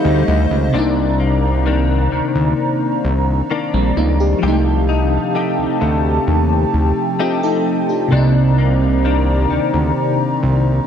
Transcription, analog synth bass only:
0.05 D2
0.28 D2
0.51 C#2
0.74 C2
2.12 D2
2.35 D2
3.04 C2
3.74 A#1
3.97 C#2
4.43 C2
5.58 D2
5.81 D2
6.27 D#2
6.74 D2
8.12 C2
9.50 D2
9.74 D2
10.43 C2

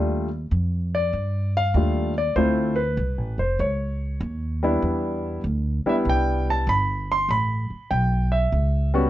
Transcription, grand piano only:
Already playing: G3 A3 D4 F4
0.95 D5
1.57 F5
1.75 G3 A3 D4 F4
2.18 D5
2.36 A3 C4 E4 F4 C5
2.76 B4
3.39 C5
3.60 C#5
4.63 G3 B3 D4 E4
5.86 G3 B3 D4 E4 E5
6.09 G5
6.50 A5
6.69 B5
7.12 C6
7.31 B5
7.91 G5
8.32 E5
8.94 G3 B3 C#4 F#4

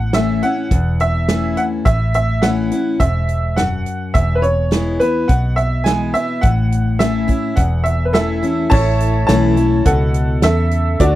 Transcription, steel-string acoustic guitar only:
Already playing: A2
0.15 E3 A3 C#4 E4
0.43 C#4 E4
0.72 E2
1.29 E3 A3 C#4 E4
1.87 A2
2.43 E3 A3 C#4 E4
2.72 C#4 E4
3.01 G#2
3.58 F#2
4.15 E2
4.71 E3 G#3 B3 E4
5.00 B3 E4
5.29 B2
5.85 E3 G#3 B3 E4
6.14 B3 E4
6.43 A2
6.99 E3 A3 C#4 E4
7.28 C#4 E4
7.57 E2
8.13 E3 A3 C#4 E4
8.43 C#4 E4
8.72 A2
9.29 E3 A3 C#4 E4
9.56 C#4 E4
9.86 B2
10.43 C#3
11.01 D3

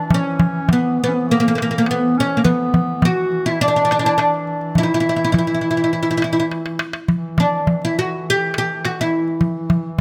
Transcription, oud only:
Already playing: D4
0.14 C#4
0.73 B3
1.04 B3
1.31 A#3
1.40 A#3
1.48 A#3
1.55 A#3
1.62 A#3
1.71 A#3
1.78 A#3
1.91 B3
2.20 C#4
2.37 A#3
2.45 B3
3.05 F#4
3.46 E4
3.61 D4
3.68 D4
3.76 D4
3.85 D4
3.92 D4
3.99 D4
4.06 D4
4.18 D4
4.78 E4
4.83 E4
4.94 E4
5.00 E4
5.09 E4
5.16 E4
5.25 E4
5.32 E4
5.39 E4
5.47 E4
5.54 E4
5.61 E4
5.71 E4
5.77 E4
5.84 E4
5.93 E4
6.03 E4
6.11 E4
6.17 E4
6.24 E4
6.33 E4
6.40 E4
7.40 D4
7.85 E4
7.99 F#4
8.30 G4
8.58 G4
8.85 F#4
9.01 E4

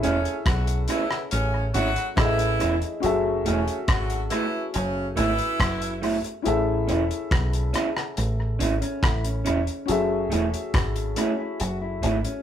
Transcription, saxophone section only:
0.03 C#3 C#4
0.45 F#3 F#4
0.88 E3 E4
1.31 C#3 C#4
1.74 F#3 F#4
2.17 E3 E4
3.45 C#3 C#4
3.88 F#3 F#4
4.30 E3 E4
4.73 C#3 C#4
5.16 E3 E4

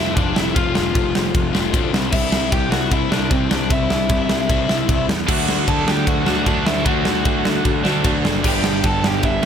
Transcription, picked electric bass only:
0.00 F1
0.17 F1
0.37 F1
0.56 F1
0.77 F1
0.95 F1
1.35 F1
1.55 F1
1.74 D2
1.93 C2
2.13 C2
2.52 C2
2.71 C2
2.91 C2
3.11 C2
3.31 C2
3.51 C2
3.71 C2
3.91 C2
4.10 C2
4.50 C2
4.69 C2
4.89 C2
5.08 E2
5.29 D2
5.68 D2
5.87 D2
6.07 D2
6.26 D2
6.47 D2
6.66 D2
6.86 D2
7.06 D2
7.26 D2
7.65 D2
7.85 D2
8.05 D2
8.25 F#1
8.45 G1
8.84 G1
9.04 G1
9.23 G1

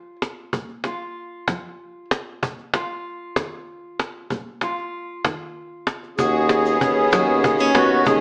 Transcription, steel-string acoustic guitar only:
Already playing: F3 F4
0.53 A#2
0.86 F4
1.49 F3
2.42 B2
2.75 F4
3.37 D#3
4.32 B2
4.63 F4
5.25 D#3
6.19 D#2 F#4
6.81 C#4
7.13 F#3 F#4
7.44 A#3
7.60 C#4
7.76 B3
8.06 D#2 D#3 G#3 C#4 D#4

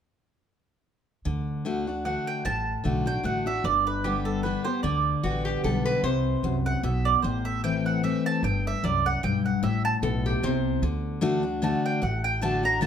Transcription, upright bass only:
1.25 D2
2.45 A1
2.85 B1
3.24 A1
3.64 G1
4.84 D2
5.23 A1
5.64 B1
6.03 C2
6.43 C2
6.83 B1
7.23 A1
8.43 G1
8.83 C2
9.23 B1
9.62 A1
10.02 B1
10.43 C2
10.82 D2
12.03 A1

